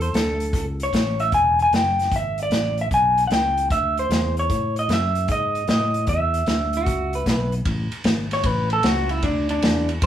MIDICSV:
0, 0, Header, 1, 5, 480
1, 0, Start_track
1, 0, Key_signature, 3, "major"
1, 0, Tempo, 395778
1, 1598, Time_signature, 4, 2, 24, 8
1, 12203, End_track
2, 0, Start_track
2, 0, Title_t, "Clean electric guitar"
2, 0, Program_c, 0, 27
2, 0, Note_on_c, 0, 69, 75
2, 1006, Note_off_c, 0, 69, 0
2, 1011, Note_on_c, 0, 73, 91
2, 1458, Note_on_c, 0, 76, 76
2, 1478, Note_off_c, 0, 73, 0
2, 1613, Note_off_c, 0, 76, 0
2, 1630, Note_on_c, 0, 80, 87
2, 1943, Note_off_c, 0, 80, 0
2, 1970, Note_on_c, 0, 80, 79
2, 2096, Note_off_c, 0, 80, 0
2, 2136, Note_on_c, 0, 79, 88
2, 2602, Note_off_c, 0, 79, 0
2, 2618, Note_on_c, 0, 76, 86
2, 2888, Note_off_c, 0, 76, 0
2, 2942, Note_on_c, 0, 74, 89
2, 3405, Note_off_c, 0, 74, 0
2, 3412, Note_on_c, 0, 76, 85
2, 3473, Note_off_c, 0, 76, 0
2, 3565, Note_on_c, 0, 80, 89
2, 3938, Note_off_c, 0, 80, 0
2, 3971, Note_on_c, 0, 78, 63
2, 4014, Note_off_c, 0, 78, 0
2, 4035, Note_on_c, 0, 79, 88
2, 4503, Note_off_c, 0, 79, 0
2, 4507, Note_on_c, 0, 76, 89
2, 4793, Note_off_c, 0, 76, 0
2, 4843, Note_on_c, 0, 72, 91
2, 5270, Note_off_c, 0, 72, 0
2, 5330, Note_on_c, 0, 73, 85
2, 5800, Note_off_c, 0, 73, 0
2, 5810, Note_on_c, 0, 75, 87
2, 5950, Note_off_c, 0, 75, 0
2, 5980, Note_on_c, 0, 76, 87
2, 6443, Note_off_c, 0, 76, 0
2, 6447, Note_on_c, 0, 75, 91
2, 6873, Note_off_c, 0, 75, 0
2, 6921, Note_on_c, 0, 75, 78
2, 7350, Note_off_c, 0, 75, 0
2, 7387, Note_on_c, 0, 76, 75
2, 9085, Note_off_c, 0, 76, 0
2, 10107, Note_on_c, 0, 73, 99
2, 10260, Note_off_c, 0, 73, 0
2, 10260, Note_on_c, 0, 71, 83
2, 10560, Note_off_c, 0, 71, 0
2, 10587, Note_on_c, 0, 69, 86
2, 10729, Note_off_c, 0, 69, 0
2, 10730, Note_on_c, 0, 66, 79
2, 11045, Note_off_c, 0, 66, 0
2, 11045, Note_on_c, 0, 64, 85
2, 11197, Note_off_c, 0, 64, 0
2, 11202, Note_on_c, 0, 62, 82
2, 11509, Note_off_c, 0, 62, 0
2, 11529, Note_on_c, 0, 62, 93
2, 11987, Note_off_c, 0, 62, 0
2, 12203, End_track
3, 0, Start_track
3, 0, Title_t, "Electric slide guitar"
3, 0, Program_c, 1, 29
3, 22, Note_on_c, 1, 72, 70
3, 166, Note_off_c, 1, 72, 0
3, 182, Note_on_c, 1, 69, 77
3, 791, Note_off_c, 1, 69, 0
3, 8210, Note_on_c, 1, 66, 77
3, 8653, Note_off_c, 1, 66, 0
3, 8674, Note_on_c, 1, 71, 61
3, 8814, Note_off_c, 1, 71, 0
3, 8844, Note_on_c, 1, 71, 62
3, 9134, Note_off_c, 1, 71, 0
3, 12203, End_track
4, 0, Start_track
4, 0, Title_t, "Fingered electric bass"
4, 0, Program_c, 2, 33
4, 0, Note_on_c, 2, 40, 70
4, 145, Note_off_c, 2, 40, 0
4, 161, Note_on_c, 2, 38, 74
4, 625, Note_off_c, 2, 38, 0
4, 641, Note_on_c, 2, 37, 76
4, 1106, Note_off_c, 2, 37, 0
4, 1120, Note_on_c, 2, 33, 75
4, 1585, Note_off_c, 2, 33, 0
4, 1602, Note_on_c, 2, 28, 67
4, 2067, Note_off_c, 2, 28, 0
4, 2075, Note_on_c, 2, 30, 70
4, 2543, Note_off_c, 2, 30, 0
4, 2564, Note_on_c, 2, 32, 73
4, 3024, Note_off_c, 2, 32, 0
4, 3032, Note_on_c, 2, 33, 78
4, 3502, Note_off_c, 2, 33, 0
4, 3526, Note_on_c, 2, 35, 70
4, 3990, Note_off_c, 2, 35, 0
4, 4000, Note_on_c, 2, 37, 83
4, 4467, Note_off_c, 2, 37, 0
4, 4491, Note_on_c, 2, 38, 73
4, 4952, Note_off_c, 2, 38, 0
4, 4964, Note_on_c, 2, 40, 78
4, 5429, Note_off_c, 2, 40, 0
4, 5453, Note_on_c, 2, 45, 68
4, 5914, Note_off_c, 2, 45, 0
4, 5923, Note_on_c, 2, 42, 81
4, 6389, Note_off_c, 2, 42, 0
4, 6407, Note_on_c, 2, 44, 74
4, 6871, Note_off_c, 2, 44, 0
4, 6885, Note_on_c, 2, 45, 82
4, 7350, Note_off_c, 2, 45, 0
4, 7366, Note_on_c, 2, 40, 69
4, 7831, Note_off_c, 2, 40, 0
4, 7847, Note_on_c, 2, 38, 71
4, 8310, Note_off_c, 2, 38, 0
4, 8326, Note_on_c, 2, 37, 74
4, 8790, Note_off_c, 2, 37, 0
4, 8804, Note_on_c, 2, 35, 79
4, 9268, Note_off_c, 2, 35, 0
4, 9283, Note_on_c, 2, 33, 76
4, 9579, Note_off_c, 2, 33, 0
4, 9755, Note_on_c, 2, 32, 90
4, 10223, Note_off_c, 2, 32, 0
4, 10233, Note_on_c, 2, 33, 87
4, 10701, Note_off_c, 2, 33, 0
4, 10713, Note_on_c, 2, 37, 92
4, 11181, Note_off_c, 2, 37, 0
4, 11187, Note_on_c, 2, 38, 79
4, 11657, Note_off_c, 2, 38, 0
4, 11665, Note_on_c, 2, 40, 81
4, 12135, Note_off_c, 2, 40, 0
4, 12154, Note_on_c, 2, 42, 86
4, 12203, Note_off_c, 2, 42, 0
4, 12203, End_track
5, 0, Start_track
5, 0, Title_t, "Drums"
5, 8, Note_on_c, 9, 42, 53
5, 130, Note_off_c, 9, 42, 0
5, 170, Note_on_c, 9, 42, 71
5, 186, Note_on_c, 9, 38, 93
5, 292, Note_off_c, 9, 42, 0
5, 307, Note_off_c, 9, 38, 0
5, 487, Note_on_c, 9, 42, 59
5, 608, Note_off_c, 9, 42, 0
5, 644, Note_on_c, 9, 36, 102
5, 648, Note_on_c, 9, 42, 79
5, 765, Note_off_c, 9, 36, 0
5, 769, Note_off_c, 9, 42, 0
5, 966, Note_on_c, 9, 42, 52
5, 1088, Note_off_c, 9, 42, 0
5, 1125, Note_on_c, 9, 36, 65
5, 1132, Note_on_c, 9, 42, 75
5, 1148, Note_on_c, 9, 38, 90
5, 1246, Note_off_c, 9, 36, 0
5, 1253, Note_off_c, 9, 42, 0
5, 1269, Note_off_c, 9, 38, 0
5, 1448, Note_on_c, 9, 42, 51
5, 1569, Note_off_c, 9, 42, 0
5, 1601, Note_on_c, 9, 42, 71
5, 1606, Note_on_c, 9, 36, 95
5, 1722, Note_off_c, 9, 42, 0
5, 1727, Note_off_c, 9, 36, 0
5, 1929, Note_on_c, 9, 42, 52
5, 2051, Note_off_c, 9, 42, 0
5, 2094, Note_on_c, 9, 42, 64
5, 2110, Note_on_c, 9, 38, 88
5, 2216, Note_off_c, 9, 42, 0
5, 2231, Note_off_c, 9, 38, 0
5, 2417, Note_on_c, 9, 42, 53
5, 2433, Note_on_c, 9, 38, 30
5, 2538, Note_off_c, 9, 42, 0
5, 2554, Note_off_c, 9, 38, 0
5, 2566, Note_on_c, 9, 36, 102
5, 2568, Note_on_c, 9, 42, 72
5, 2687, Note_off_c, 9, 36, 0
5, 2689, Note_off_c, 9, 42, 0
5, 2884, Note_on_c, 9, 42, 50
5, 3005, Note_off_c, 9, 42, 0
5, 3041, Note_on_c, 9, 42, 67
5, 3057, Note_on_c, 9, 38, 90
5, 3163, Note_off_c, 9, 42, 0
5, 3179, Note_off_c, 9, 38, 0
5, 3366, Note_on_c, 9, 42, 50
5, 3487, Note_off_c, 9, 42, 0
5, 3529, Note_on_c, 9, 42, 71
5, 3530, Note_on_c, 9, 36, 92
5, 3650, Note_off_c, 9, 42, 0
5, 3651, Note_off_c, 9, 36, 0
5, 3851, Note_on_c, 9, 42, 58
5, 3972, Note_off_c, 9, 42, 0
5, 4009, Note_on_c, 9, 42, 77
5, 4025, Note_on_c, 9, 38, 93
5, 4130, Note_off_c, 9, 42, 0
5, 4146, Note_off_c, 9, 38, 0
5, 4336, Note_on_c, 9, 42, 58
5, 4457, Note_off_c, 9, 42, 0
5, 4492, Note_on_c, 9, 42, 80
5, 4493, Note_on_c, 9, 36, 99
5, 4614, Note_off_c, 9, 42, 0
5, 4615, Note_off_c, 9, 36, 0
5, 4818, Note_on_c, 9, 42, 57
5, 4939, Note_off_c, 9, 42, 0
5, 4980, Note_on_c, 9, 42, 79
5, 4995, Note_on_c, 9, 38, 96
5, 5101, Note_off_c, 9, 42, 0
5, 5117, Note_off_c, 9, 38, 0
5, 5298, Note_on_c, 9, 42, 51
5, 5420, Note_off_c, 9, 42, 0
5, 5453, Note_on_c, 9, 42, 75
5, 5455, Note_on_c, 9, 36, 92
5, 5574, Note_off_c, 9, 42, 0
5, 5576, Note_off_c, 9, 36, 0
5, 5774, Note_on_c, 9, 42, 53
5, 5895, Note_off_c, 9, 42, 0
5, 5930, Note_on_c, 9, 42, 71
5, 5946, Note_on_c, 9, 38, 90
5, 6052, Note_off_c, 9, 42, 0
5, 6067, Note_off_c, 9, 38, 0
5, 6248, Note_on_c, 9, 42, 54
5, 6369, Note_off_c, 9, 42, 0
5, 6403, Note_on_c, 9, 42, 78
5, 6411, Note_on_c, 9, 36, 102
5, 6525, Note_off_c, 9, 42, 0
5, 6532, Note_off_c, 9, 36, 0
5, 6732, Note_on_c, 9, 42, 52
5, 6853, Note_off_c, 9, 42, 0
5, 6882, Note_on_c, 9, 42, 64
5, 6898, Note_on_c, 9, 38, 101
5, 7003, Note_off_c, 9, 42, 0
5, 7019, Note_off_c, 9, 38, 0
5, 7205, Note_on_c, 9, 42, 49
5, 7326, Note_off_c, 9, 42, 0
5, 7358, Note_on_c, 9, 42, 72
5, 7367, Note_on_c, 9, 36, 95
5, 7479, Note_off_c, 9, 42, 0
5, 7488, Note_off_c, 9, 36, 0
5, 7687, Note_on_c, 9, 42, 56
5, 7808, Note_off_c, 9, 42, 0
5, 7839, Note_on_c, 9, 42, 68
5, 7855, Note_on_c, 9, 38, 86
5, 7960, Note_off_c, 9, 42, 0
5, 7976, Note_off_c, 9, 38, 0
5, 8160, Note_on_c, 9, 42, 59
5, 8282, Note_off_c, 9, 42, 0
5, 8324, Note_on_c, 9, 42, 80
5, 8326, Note_on_c, 9, 36, 100
5, 8445, Note_off_c, 9, 42, 0
5, 8447, Note_off_c, 9, 36, 0
5, 8646, Note_on_c, 9, 42, 57
5, 8768, Note_off_c, 9, 42, 0
5, 8806, Note_on_c, 9, 36, 64
5, 8806, Note_on_c, 9, 42, 75
5, 8821, Note_on_c, 9, 38, 93
5, 8927, Note_off_c, 9, 42, 0
5, 8928, Note_off_c, 9, 36, 0
5, 8943, Note_off_c, 9, 38, 0
5, 9122, Note_on_c, 9, 42, 52
5, 9243, Note_off_c, 9, 42, 0
5, 9282, Note_on_c, 9, 51, 80
5, 9284, Note_on_c, 9, 36, 98
5, 9403, Note_off_c, 9, 51, 0
5, 9405, Note_off_c, 9, 36, 0
5, 9600, Note_on_c, 9, 51, 62
5, 9722, Note_off_c, 9, 51, 0
5, 9752, Note_on_c, 9, 51, 70
5, 9767, Note_on_c, 9, 38, 106
5, 9873, Note_off_c, 9, 51, 0
5, 9889, Note_off_c, 9, 38, 0
5, 10078, Note_on_c, 9, 51, 62
5, 10093, Note_on_c, 9, 38, 34
5, 10199, Note_off_c, 9, 51, 0
5, 10215, Note_off_c, 9, 38, 0
5, 10229, Note_on_c, 9, 51, 84
5, 10236, Note_on_c, 9, 36, 111
5, 10350, Note_off_c, 9, 51, 0
5, 10357, Note_off_c, 9, 36, 0
5, 10549, Note_on_c, 9, 51, 54
5, 10671, Note_off_c, 9, 51, 0
5, 10708, Note_on_c, 9, 51, 79
5, 10723, Note_on_c, 9, 38, 106
5, 10829, Note_off_c, 9, 51, 0
5, 10845, Note_off_c, 9, 38, 0
5, 11026, Note_on_c, 9, 51, 58
5, 11147, Note_off_c, 9, 51, 0
5, 11187, Note_on_c, 9, 51, 77
5, 11192, Note_on_c, 9, 36, 99
5, 11309, Note_off_c, 9, 51, 0
5, 11313, Note_off_c, 9, 36, 0
5, 11509, Note_on_c, 9, 51, 69
5, 11631, Note_off_c, 9, 51, 0
5, 11671, Note_on_c, 9, 51, 85
5, 11687, Note_on_c, 9, 38, 110
5, 11793, Note_off_c, 9, 51, 0
5, 11808, Note_off_c, 9, 38, 0
5, 11990, Note_on_c, 9, 51, 65
5, 12112, Note_off_c, 9, 51, 0
5, 12149, Note_on_c, 9, 51, 95
5, 12153, Note_on_c, 9, 36, 121
5, 12203, Note_off_c, 9, 36, 0
5, 12203, Note_off_c, 9, 51, 0
5, 12203, End_track
0, 0, End_of_file